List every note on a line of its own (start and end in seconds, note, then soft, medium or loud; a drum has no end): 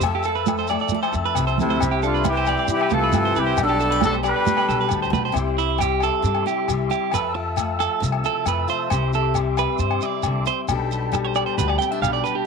0.01 0.76 F2 medium
0.01 1.78 F3 medium
0.01 0.69 A3 medium
0.01 1.79 E5 medium
0.01 1.78 A5 medium
0.01 1.79 E6 medium
0.01 muted conga soft
0.01 low agogo medium
0.01 shekere loud
0.06 1.79 E4 medium
0.06 0.27 A4 medium
0.15 0.25 G4 medium
0.23 0.36 A4 medium
0.23 shekere medium
0.28 0.47 A4 medium
0.35 0.57 B4 medium
0.35 shekere soft
0.46 0.70 A4 medium
0.46 high conga medium
0.46 low agogo medium
0.46 shekere loud
0.57 0.69 C5 medium
0.57 shekere soft
0.67 1.59 A3 medium
0.67 0.93 A4 medium
0.67 0.80 D5 medium
0.67 muted conga soft
0.67 low agogo medium
0.67 shekere medium
0.79 1.02 D5 medium
0.79 shekere soft
0.89 muted conga soft
0.89 high conga medium
0.89 shekere loud
0.94 1.37 A4 medium
1.03 1.13 C5 medium
1.03 low agogo medium
1.03 shekere soft
1.13 1.32 F2 loud
1.13 muted clean electric guitar stroke medium
1.13 muted conga soft
1.13 shekere medium
1.25 1.46 B4 medium
1.35 1.54 C2 medium
1.35 1.79 C3 medium
1.35 1.82 A4 medium
1.35 low agogo medium
1.35 shekere medium
1.47 1.58 C5 medium
1.47 shekere soft
1.58 1.77 D2 medium
1.58 1.79 A3 medium
1.58 2.00 C4 medium
1.58 2.01 E4 medium
1.58 high conga medium
1.58 low conga medium
1.58 shekere medium
1.62 2.07 C3 medium
1.70 1.80 C5 medium
1.80 2.53 C2 loud
1.80 3.35 C3 medium
1.80 2.48 G3 medium
1.80 3.57 E5 medium
1.80 3.57 C6 medium
1.80 3.57 D6 medium
1.80 low agogo medium
1.80 shekere loud
1.91 2.02 G4 medium
2.03 2.26 D3 medium
2.03 2.26 D4 medium
2.03 2.25 E4 medium
2.03 2.27 F4 medium
2.03 2.14 A4 medium
2.03 shekere medium
2.14 2.35 B4 medium
2.14 shekere soft
2.24 2.48 E4 medium
2.24 2.67 E4 medium
2.24 high conga loud
2.24 low agogo medium
2.24 shekere loud
2.28 2.70 E3 medium
2.28 2.68 G4 medium
2.35 2.47 C5 medium
2.35 shekere soft
2.46 4.22 G3 medium
2.46 2.70 E4 medium
2.46 2.58 D5 medium
2.46 muted conga soft
2.46 low agogo medium
2.46 shekere medium
2.57 2.80 D5 medium
2.57 shekere soft
2.68 2.91 E4 medium
2.68 muted conga soft
2.68 shekere loud
2.74 2.97 E3 medium
2.74 2.92 G4 loud
2.79 2.92 B4 medium
2.79 low agogo medium
2.79 shekere soft
2.90 3.10 C2 loud
2.90 3.36 F4 medium
2.90 3.03 A4 medium
2.90 3.37 A4 loud
2.90 muted conga soft
2.90 high conga medium
2.90 shekere medium
2.97 3.42 E3 loud
3.04 3.24 B4 medium
3.12 3.32 G2 loud
3.12 3.36 D3 medium
3.12 high conga medium
3.12 low agogo medium
3.12 shekere loud
3.25 3.36 C5 medium
3.25 shekere soft
3.36 3.54 C2 loud
3.36 3.58 C3 medium
3.36 3.58 E4 medium
3.36 3.60 G4 medium
3.36 3.46 B4 medium
3.36 shekere medium
3.42 3.61 E3 medium
3.46 3.57 C5 medium
3.57 4.31 B1 loud
3.57 4.88 B2 medium
3.57 5.33 D4 medium
3.57 4.01 D4 medium
3.57 5.33 G5 medium
3.57 5.33 A5 medium
3.57 5.34 B5 medium
3.57 muted conga soft
3.57 low agogo medium
3.57 shekere loud
3.62 4.02 D3 medium
3.62 4.01 A4 loud
3.68 3.80 G4 medium
3.68 shekere soft
3.80 3.92 E4 medium
3.80 3.91 A4 medium
3.80 shekere medium
3.91 4.02 G4 medium
3.91 4.12 B4 medium
3.91 shekere soft
4.01 4.13 D4 medium
4.01 4.44 G4 medium
4.01 4.14 A4 loud
4.01 high conga loud
4.01 low agogo medium
4.01 shekere loud
4.07 4.16 D3 medium
4.13 4.23 C5 medium
4.13 shekere soft
4.23 5.32 G3 medium
4.23 4.88 G4 medium
4.23 5.34 A4 medium
4.23 4.88 B4 loud
4.23 4.35 D5 medium
4.23 muted conga soft
4.23 low agogo medium
4.23 shekere medium
4.29 4.89 G3 medium
4.36 4.57 D5 medium
4.45 5.32 G4 medium
4.45 muted conga soft
4.45 high conga medium
4.45 shekere loud
4.57 4.68 B4 medium
4.57 low agogo medium
4.57 shekere soft
4.69 4.87 B1 medium
4.69 4.79 A4 medium
4.69 muted conga soft
4.69 shekere medium
4.80 5.02 B4 medium
4.80 shekere soft
4.89 5.10 D2 medium
4.89 5.10 A2 medium
4.89 low agogo medium
4.89 shekere medium
5.02 5.13 C5 medium
5.02 shekere soft
5.10 5.32 B1 medium
5.10 5.32 B2 medium
5.10 5.24 B4 medium
5.10 high conga medium
5.10 low conga medium
5.10 shekere medium
5.25 5.35 C5 medium
5.32 6.08 C2 medium
5.32 6.21 C3 medium
5.32 5.57 G3 medium
5.32 6.45 E4 medium
5.32 7.10 G4 medium
5.32 7.13 C5 medium
5.32 7.11 E5 medium
5.32 7.11 C6 medium
5.32 7.11 D6 medium
5.32 low agogo medium
5.36 shekere medium
5.58 5.80 E4 medium
5.58 shekere medium
5.78 6.68 G3 medium
5.78 6.02 G4 medium
5.78 low agogo medium
5.78 shekere loud
6.00 6.44 A4 loud
6.00 low agogo medium
6.00 shekere medium
6.22 6.42 G2 loud
6.22 7.10 C3 medium
6.22 shekere medium
6.35 low agogo medium
6.46 6.90 E4 medium
6.46 6.68 G4 medium
6.46 shekere medium
6.68 6.87 C2 medium
6.68 7.13 G3 medium
6.68 low agogo medium
6.68 shekere medium
6.90 7.16 E4 medium
6.90 7.13 G4 medium
6.90 shekere medium
7.11 7.86 F2 medium
7.11 8.88 F3 medium
7.11 8.91 A4 medium
7.11 7.35 B4 medium
7.11 8.89 E5 medium
7.11 8.89 A5 medium
7.11 8.89 E6 medium
7.11 low agogo medium
7.11 shekere loud
7.35 8.67 F4 medium
7.35 muted clean electric guitar stroke loud
7.56 8.45 A3 medium
7.56 low agogo medium
7.56 shekere medium
7.79 8.02 A4 medium
7.79 low agogo medium
7.79 shekere medium
8.00 8.20 C2 loud
8.00 8.87 C3 medium
8.00 shekere loud
8.12 low agogo medium
8.24 8.88 E4 medium
8.24 8.47 A4 medium
8.24 shekere medium
8.46 8.65 F2 medium
8.46 8.88 A3 medium
8.46 8.69 B4 medium
8.46 low agogo medium
8.46 shekere loud
8.68 8.88 F4 medium
8.68 9.11 C5 loud
8.68 shekere medium
8.90 9.64 C2 loud
8.90 9.79 C3 medium
8.90 9.13 G4 medium
8.90 10.67 E5 medium
8.90 10.67 C6 medium
8.90 10.66 D6 medium
8.90 low agogo medium
8.90 shekere medium
9.13 10.71 G4 medium
9.13 9.36 A4 medium
9.13 shekere medium
9.34 10.69 G3 medium
9.34 low agogo medium
9.34 shekere medium
9.57 9.80 B4 loud
9.57 low agogo medium
9.57 shekere medium
9.79 9.98 G2 medium
9.79 10.44 C3 medium
9.79 10.03 C5 medium
9.79 shekere medium
9.91 low agogo medium
10.01 10.66 E4 medium
10.01 10.47 D5 loud
10.01 shekere medium
10.23 10.43 C2 medium
10.23 10.47 D3 medium
10.23 low agogo medium
10.23 shekere medium
10.46 10.68 C3 medium
10.46 10.60 C5 loud
10.46 shekere medium
10.68 11.42 B1 loud
10.68 11.57 B2 medium
10.68 11.11 G3 medium
10.68 11.80 D4 medium
10.68 10.91 G4 medium
10.68 12.46 A4 medium
10.68 12.46 G5 medium
10.68 12.46 A5 medium
10.68 12.45 B5 medium
10.68 low agogo medium
10.68 shekere loud
10.91 12.23 G4 medium
10.91 shekere medium
11.12 12.01 G3 medium
11.12 muted clean electric guitar stroke medium
11.12 low agogo medium
11.12 shekere loud
11.25 11.35 C5 medium
11.35 11.46 D5 loud
11.35 low agogo medium
11.35 shekere medium
11.46 11.57 C5 medium
11.58 11.76 D2 loud
11.58 12.44 B2 medium
11.58 11.68 B4 medium
11.58 shekere loud
11.68 11.78 D5 medium
11.68 low agogo medium
11.79 11.92 C4 medium
11.79 11.91 G5 loud
11.79 shekere medium
11.91 12.46 D4 medium
11.91 12.02 E5 medium
12.02 12.20 B1 loud
12.02 12.45 G3 medium
12.02 12.13 F5 loud
12.02 low agogo medium
12.02 shekere loud
12.13 12.24 D5 medium
12.24 12.44 G4 medium
12.24 12.35 B4 loud
12.24 shekere medium
12.35 12.46 G4 medium